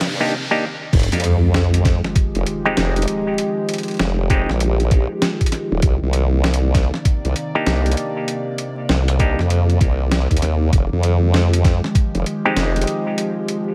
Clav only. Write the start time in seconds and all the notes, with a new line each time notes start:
0.20 A#3 D4 D#4 G4
0.51 A#3 D4 D#4 G4
2.65 G#3 C4 D#4 G4
4.30 G#3 C4 D#4 G4
7.55 A#3 D4 D#4 G4
9.20 A#3 D4 D#4 G4
12.45 G#3 C4 D#4 G4